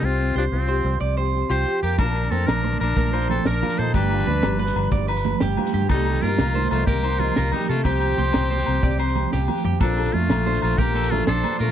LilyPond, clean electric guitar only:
\new Staff \with { instrumentName = "Clean electric guitar" } { \time 12/8 \key bes \major \tempo 4. = 123 r4 c''4 c''4 d''8 c''4 g'4 g'8 | a''4 bes'4 r4 bes'8 c''4 bes'4 a'8 | g'4 b'4 b'4 d''8 b'4 g'4 g'8 | a'4 bes'4 c''4 bes'8 c''4 bes'4 a'8 |
g'4 c''4 c''4 d''8 c''4 g'4 g'8 | a'4 r4 c''4 bes'8 a'4 c''4 bes'8 | }